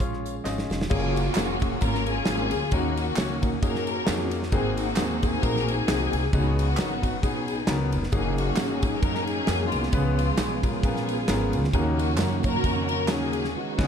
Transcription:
Already playing: tonewheel organ F3 G#3 C#4 G#4, tenor saxophone F4
0.00 upright bass A#1, grand piano C#4 F4 G#4 C#5, kick, closed hi-hat, tambourine
0.13 cross-stick
0.26 closed hi-hat, tambourine
0.44 upright bass G#1, grand piano C#4 F4 G#4 D#5, snare, clap, tambourine
0.58 snare
0.70 upright bass F1, snare, tambourine
0.81 snare
0.90 upright bass F#1, grand piano F#3 A#3 C#4 F4 G#4, string section C#4 F4 G#4, kick, crash, tambourine
1.16 string section A#3 C#4 F#4, ride, tambourine
1.34 upright bass F1, grand piano A#3 C#4 F4 F#4 G#4, snare, clap, ride, tambourine
1.60 grand piano A#3 C#4 F4 F#4 G#4, kick, ride, tambourine
1.81 upright bass G#1, grand piano F#3 A#3 C#4 F4 A#4, string section C#4 F4 A#4, kick, ride, tambourine
1.94 snare
2.06 string section C#4 F4 G#4, ride, tambourine
2.26 upright bass G#1, grand piano F#3 A#3 C#4 F4 G#4, snare, clap, ride, tambourine
2.51 upright bass D2, ride, tambourine
2.71 upright bass D#2, grand piano D#3 A#3 C#4 D#4 F#4 A#4, string section A#3 C#4 F#4, kick, ride, tambourine
2.97 string section A#3 C#4 F#4, ride, tambourine
3.16 upright bass C#2, grand piano A#3 C#4 D#4 F#4 C#5, snare, clap, ride, tambourine
3.42 grand piano A#3 C#4 D#4 F#4 A#4, kick, ride, tambourine
3.62 upright bass F#2, grand piano A#3 C#4 D#4 F#4 G#4, string section C#4 F#4 A#4, kick, ride, tambourine
3.75 snare
3.87 ride, tambourine
4.06 upright bass F2, grand piano A#3 C#4 D#4 F#4 G#4, snare, clap, ride, tambourine
4.31 ride, tambourine
4.43 snare
4.52 upright bass G#1, grand piano G#2 A#3 C4 D#4 F#4 G#4, string section C4 D#4 G#4, kick, ride, tambourine
4.77 string section A#3 C4 F#4, ride, tambourine
4.96 upright bass D#2, grand piano A#3 C4 D#4 F#4 G#4, snare, clap, ride, tambourine
5.22 grand piano A#3 C4 D#4 F#4 G#4, string section G#4, kick, ride, tambourine
5.42 upright bass A#1, grand piano A#3 C4 D#4 F#4 G#4, string section D#4 F#4 A#4, kick, ride, tambourine
5.56 snare
5.68 string section C4 D#4 G#4, ride, tambourine
5.88 upright bass C2, grand piano A#3 C4 D#4 F#4 G#4, snare, clap, ride, tambourine
6.13 upright bass C2, ride, tambourine
6.33 upright bass C#2, grand piano C#3 B3 C#4 D#4 F#4 G#4, string section B3 D#4 F#4, kick, ride, tambourine
6.59 string section B3 D#4 F#4, ride, tambourine
6.77 grand piano B3 C#4 D#4 F#4 A#4, snare, clap, ride, tambourine
7.02 grand piano B3 C#4 D#4 F#4 B4, kick, ride, tambourine
7.23 upright bass B1, grand piano B3 C#4 D#4 F#4 G#4, string section B3 D#4 G#4, kick, ride, tambourine
7.48 ride, tambourine
7.67 upright bass C#2, grand piano B3 C#4 D#4 F#4 A#4, snare, clap, ride, tambourine
7.92 upright bass F1, ride, tambourine
8.03 snare
8.12 upright bass F#1, tonewheel organ F#3 A#3 C#4 D#4 G#4, grand piano A#3 C#4 D#4 F#4 G#4, string section C#4 D#4 G#4, kick, ride, tambourine
8.37 string section A#3 D#4 F#4, ride, tambourine
8.56 upright bass G#1, grand piano A#3 C#4 D#4 F#4 G#4, snare, clap, ride, tambourine
8.79 string section G#4, kick, ride, tambourine
8.83 grand piano A#3 C#4 D#4 F#4 G#4
9.00 upright bass F#2, grand piano A#3 D#4, string section C#4 D#4 A#4, kick, ride, tambourine
9.04 grand piano C#4 F#4 A#4
9.15 snare
9.25 string section C#4 D#4 G#4, ride, tambourine
9.47 upright bass F2, grand piano A#3 C#4 D#4 F#4 G#4, snare, clap, ride, tambourine
9.68 string section G#3 B3 F4, ride
9.73 upright bass C2, tambourine
9.83 snare
9.93 upright bass C#2, grand piano C#3 B3 C#4 F4 G#4 B4, tonewheel organ F3 G#3 B3 C#4 G#4, kick, ride, tambourine
10.15 string section G#3 B3 F4, ride
10.19 tambourine
10.37 upright bass B1, grand piano B3 C#4 F4 G#4 C#5, snare, clap, ride, tambourine
10.63 grand piano B3 C#4 F4 G#4 A#4, kick, ride, tambourine
10.80 upright bass A#1, string section B3 F4 G#4, kick, tambourine
10.84 grand piano B3 C#4 F4 G#4 A#4, ride
10.96 snare
11.09 ride, tambourine
11.28 upright bass G#1, grand piano B3 C#4 F4 G#4 A#4, snare, clap, ride, tambourine
11.53 upright bass D2, ride, tambourine
11.64 snare
11.73 upright bass D#2, tonewheel organ C#3 D#3 A#3 C#4 F4, grand piano D#3 A#3 C#4 D#4 F#4 A#4, string section C#4 G#4, kick, ride, tambourine
11.79 tonewheel organ F#4
11.96 string section A#3 C#4 F#4, ride, tambourine
12.17 upright bass F#2, grand piano A#3 C#4 D#4 F#4 A#4, snare, clap, ride, tambourine
12.43 grand piano A#3 C#4 D#4 F#4 C#5, string section C#4 F#4 A#4, kick, ride, tambourine
12.64 upright bass F2, grand piano A#3 C#4 D#4 F#4 A#4, kick, ride, tambourine
12.88 string section A#4, ride, tambourine
13.08 upright bass D#2, grand piano A#3 C#4 D#4 F#4 G#4, string section C#4 G#4, snare, clap, ride, tambourine
13.33 ride, tambourine
13.44 snare
13.55 tonewheel organ D#3 G#3 B3 C#4 F4, string section B3 D#4 F#4
13.61 tonewheel organ F#4
13.78 upright bass C#2, grand piano C#3 B3 C#4 D#4 F#4 G#4, kick, snare, crash

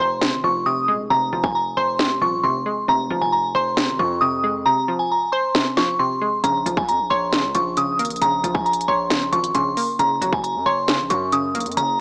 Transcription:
Already playing: synth pluck C3 F3
0.00 808-style bass F1, synth pluck C5, synth bell C6
0.21 synth pluck C3, snare
0.33 808-style bass G#1
0.44 808-style bass F1, synth pluck F3, synth bell C#6
0.66 synth pluck C3, synth bell D#6
0.88 808-style bass D#1, synth pluck G#3
0.99 808-style bass F1
1.10 808-style bass F1, synth pluck C3, synth bell A#5
1.33 808-style bass F1, synth pluck F3
1.43 synth bell G#5, kick
1.55 synth bell A#5
1.77 808-style bass F1, synth pluck C5, synth bell C6
1.99 synth pluck C3, snare
2.21 808-style bass D#1, synth pluck F3, synth bell C#6
2.43 808-style bass F1, synth pluck C3, synth bell C6
2.66 synth pluck G#3
2.88 808-style bass F1, synth pluck C3, synth bell A#5
3.10 808-style bass F1, synth pluck F3
3.21 808-style bass F1, synth bell G#5
3.32 synth bell A#5
3.55 808-style bass F1, synth pluck C5, synth bell C6
3.77 synth pluck C3, snare
3.88 808-style bass G#1
3.99 808-style bass F2, synth pluck F3, synth bell C#6
4.21 synth pluck C3, synth bell D#6
4.44 synth pluck G#3
4.66 synth pluck C3, synth bell A#5
4.88 synth pluck F3
4.99 synth bell G#5
5.12 synth bell A#5
5.32 synth pluck C5, synth bell C6
5.55 synth pluck C3, snare
5.77 synth pluck F3, synth bell C#6, snare
5.99 synth pluck C3, synth bell C6
6.22 synth pluck G#3
6.44 808-style bass A#1, synth pluck C#3, synth bell A#5, closed hi-hat
6.66 808-style bass A#1, synth pluck F3, closed hi-hat
6.77 synth bell G#5, kick
6.88 808-style bass F2, synth bell A#5, closed hi-hat
6.99 808-style bass A#1
7.10 808-style bass A#1, synth pluck C#5, synth bell C6
7.33 synth pluck C#3, snare, closed hi-hat
7.44 808-style bass C#2
7.55 808-style bass A#1, synth pluck F3, synth bell C#6, closed hi-hat
7.77 synth pluck C#3, synth bell D#6, closed hi-hat
7.99 808-style bass G#1, synth pluck A#3, closed hi-hat
8.05 closed hi-hat
8.10 808-style bass A#1, closed hi-hat
8.16 closed hi-hat
8.22 808-style bass A#1, synth pluck C#3, synth bell A#5, closed hi-hat
8.44 808-style bass A#1, synth pluck F3, closed hi-hat
8.54 synth bell G#5, kick
8.66 synth bell A#5, closed hi-hat
8.73 closed hi-hat
8.81 closed hi-hat
8.88 808-style bass A#1, synth pluck C#5, synth bell C6
9.10 synth pluck C#3, snare, closed hi-hat
9.32 808-style bass G#1, synth pluck F3, synth bell C#6, closed hi-hat
9.44 closed hi-hat
9.55 808-style bass A#1, synth pluck C#3, synth bell C6, closed hi-hat
9.77 synth pluck A#3, open hi-hat
9.99 808-style bass F#1, synth pluck C#3, synth bell A#5, closed hi-hat
10.21 808-style bass F#1, synth pluck F#3, closed hi-hat
10.33 synth bell G#5, kick
10.44 synth bell A#5, closed hi-hat
10.55 808-style bass F#2
10.66 808-style bass F#1, synth pluck C#5, synth bell C6
10.88 synth pluck C#3, snare, closed hi-hat
10.99 808-style bass A#1
11.10 808-style bass F#2, synth pluck F#3, synth bell C#6, closed hi-hat
11.32 synth pluck C#3, synth bell D#6, closed hi-hat
11.55 808-style bass A#1, synth pluck A#3, closed hi-hat
11.60 closed hi-hat
11.66 808-style bass F#2, closed hi-hat
11.72 closed hi-hat
11.77 808-style bass F#1, synth pluck C#3, synth bell A#5, closed hi-hat

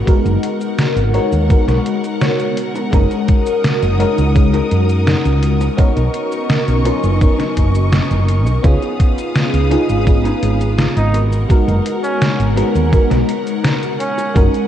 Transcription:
Already playing: clean electric guitar B3 F#4 A#4, string section A#4 F#5
0.06 fm electric piano G#3 B3 D#4 F#4 A#4, muted fretless electric bass stroke, kick, closed hi-hat, cabasa
0.25 fretless electric bass F#1, muted clean electric guitar stroke, closed hi-hat, cabasa
0.43 closed hi-hat
0.61 closed hi-hat, cabasa
0.79 snare, closed hi-hat, cabasa
0.96 fretless electric bass G#1, closed hi-hat, cabasa
1.13 fm electric piano G#3 B3 D#4 F#4 A#4, clean electric guitar B3 F#4 C#5, closed hi-hat
1.32 fretless electric bass D#2, closed hi-hat, cabasa
1.49 fm electric piano G#3 B3 D#4 F#4 A#4, kick, closed hi-hat, cabasa
1.68 fretless electric bass B1, clean electric guitar B3 F#4 A#4, snare, closed hi-hat, cabasa
1.86 closed hi-hat
2.04 closed hi-hat, cabasa
2.21 clean electric guitar B3 F#4 C#5, snare, closed hi-hat, cabasa
2.40 closed hi-hat, cabasa
2.57 closed hi-hat
2.75 muted clean electric guitar stroke, closed hi-hat, cabasa
2.91 fretless electric bass F#1, fm electric piano G#3 C#4 D#4 F#4 A#4, string section D#6, muted clean electric guitar stroke, kick, closed hi-hat, cabasa
3.11 muted clean electric guitar stroke, closed hi-hat, cabasa
3.28 kick, closed hi-hat
3.47 closed hi-hat, cabasa
3.64 snare, closed hi-hat, cabasa
3.82 fretless electric bass F#1, closed hi-hat, cabasa
3.99 fm electric piano G#3 C#4 D#4 F#4 A#4, clean electric guitar D#4 F#4 A#4, closed hi-hat
4.18 fretless electric bass C#2, closed hi-hat, cabasa
4.34 fm electric piano G#3 C#4 D#4 F#4 A#4, kick, closed hi-hat, cabasa
4.53 clean electric guitar D#4 F#4 A#4, closed hi-hat, cabasa
4.71 fretless electric bass F#2, closed hi-hat
4.89 closed hi-hat, cabasa
5.06 clean electric guitar D#4 F#4 A#4, snare, closed hi-hat, cabasa
5.25 fretless electric bass C#2, closed hi-hat, cabasa
5.42 closed hi-hat
5.61 muted clean electric guitar stroke, closed hi-hat, cabasa
5.77 fm electric piano B3 C#4 D#4 F#4 A#4, string section D#5 C#6, muted clean electric guitar stroke, muted fretless electric bass stroke, kick, closed hi-hat, cabasa
5.96 fretless electric bass B1, muted clean electric guitar stroke, closed hi-hat, cabasa
6.14 closed hi-hat
6.32 closed hi-hat, cabasa
6.50 snare, closed hi-hat, cabasa
6.68 fretless electric bass B1, closed hi-hat, cabasa
6.85 fm electric piano F#3 B3 C#4 D#4 A#4, clean electric guitar C#4 D#4 F4, closed hi-hat
7.04 fretless electric bass F#1, closed hi-hat, cabasa
7.20 fm electric piano F#3 B3 C#4 D#4 A#4, kick, closed hi-hat, cabasa
7.39 clean electric guitar C#4 D#4 A#4, snare, closed hi-hat, cabasa
7.57 fretless electric bass F#1, kick, closed hi-hat
7.75 closed hi-hat, cabasa
7.92 clean electric guitar C#4 D#4 F#4, snare, closed hi-hat, cabasa
8.11 fretless electric bass F#1, closed hi-hat, cabasa
8.29 closed hi-hat
8.46 fretless electric bass B1, muted clean electric guitar stroke, closed hi-hat, cabasa
8.63 fretless electric bass C#2, fm electric piano B3 C#4 D#4 F4 G#4, string section B4 F5 D#6, muted clean electric guitar stroke, kick, closed hi-hat, cabasa
8.82 muted clean electric guitar stroke, closed hi-hat, cabasa
9.00 kick, closed hi-hat
9.18 closed hi-hat, cabasa
9.36 snare, closed hi-hat, cabasa
9.54 fretless electric bass C#2, closed hi-hat, cabasa
9.71 fm electric piano B3 C#4 D#4 F4 G#4, clean electric guitar D#4 F4 B4, closed hi-hat
9.90 fretless electric bass G#1, closed hi-hat, cabasa
10.06 fm electric piano B3 C#4 D#4 F4 G#4, kick, closed hi-hat, cabasa
10.25 clean electric guitar D#4 F4 G#4, closed hi-hat, cabasa
10.43 fretless electric bass G#1, closed hi-hat
10.61 closed hi-hat, cabasa
10.78 clean electric guitar D#4 F4 G#4, snare, closed hi-hat, cabasa
10.97 fretless electric bass G#1, flugelhorn D#4, closed hi-hat, cabasa
11.14 clean electric guitar B3 F#4 A#4, string section A#4 F#5, closed hi-hat
11.33 closed hi-hat, cabasa
11.49 fm electric piano G#3 B3 D#4 F#4 A#4, muted fretless electric bass stroke, kick, closed hi-hat, cabasa
11.68 fretless electric bass F#1, muted clean electric guitar stroke, closed hi-hat, cabasa
11.86 closed hi-hat
12.04 flugelhorn C#4, closed hi-hat, cabasa
12.22 snare, closed hi-hat, cabasa
12.39 fretless electric bass G#1, closed hi-hat, cabasa
12.56 fm electric piano G#3 B3 D#4 F#4 A#4, clean electric guitar B3 F#4 A#4, closed hi-hat
12.75 fretless electric bass D#2, closed hi-hat, cabasa
12.91 fm electric piano G#3 B3 D#4 F#4 A#4, kick, closed hi-hat, cabasa
13.10 fretless electric bass B1, clean electric guitar B3 F#4 A#4, snare, closed hi-hat, cabasa
13.29 closed hi-hat
13.47 closed hi-hat, cabasa
13.64 clean electric guitar B3 F#4 A#4, snare, closed hi-hat, cabasa
13.83 closed hi-hat, cabasa
14.00 flugelhorn C#4, closed hi-hat
14.18 muted clean electric guitar stroke, closed hi-hat, cabasa
14.34 fretless electric bass F#1, fm electric piano G#3 C#4 D#4 F#4 A#4, string section A#4 D#6, muted clean electric guitar stroke, kick, closed hi-hat, cabasa
14.53 muted clean electric guitar stroke, closed hi-hat, cabasa

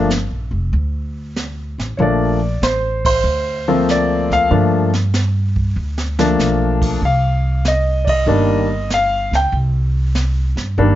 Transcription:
Already playing: upright bass G1
0.10 snare, hi-hat pedal
0.31 upright bass A#1
0.51 upright bass F1
0.73 upright bass D2, brush sweep, kick
1.36 snare, hi-hat pedal
1.78 upright bass A1, snare
1.97 upright bass A#1, grand piano F3 A3 A#3 D4 C#5, brush sweep, kick
2.02 grand piano D5
2.62 upright bass A1, grand piano C5, snare, hi-hat pedal
3.05 grand piano C5, kick, ride
3.24 upright bass D2, brush sweep
3.68 grand piano F3 A3 A#3 C4
3.89 grand piano D5, snare, hi-hat pedal
4.31 grand piano F5, kick, snare
4.51 upright bass G2, grand piano F3 A3 A#3 D4, brush sweep, kick
4.94 snare
5.14 snare, hi-hat pedal
5.56 kick
5.76 upright bass D2
5.98 snare
6.19 grand piano F3 A3 A#3 D4, snare
6.39 upright bass B1, snare, hi-hat pedal
6.82 kick, crash
7.02 upright bass C2, grand piano F5, brush sweep, kick
7.65 grand piano D#5, snare, hi-hat pedal
8.05 grand piano D5, kick, ride
8.09 grand piano D#5
8.26 upright bass G1, grand piano D#3 G3 A#3 D4, brush sweep
8.90 grand piano F5, snare, hi-hat pedal
9.31 upright bass C#2, snare
9.35 grand piano G5
9.52 upright bass C2, brush sweep, kick
10.15 snare, hi-hat pedal
10.56 upright bass G2, snare
10.78 upright bass G1, grand piano D#3 G3 A#3 D4, brush sweep, kick

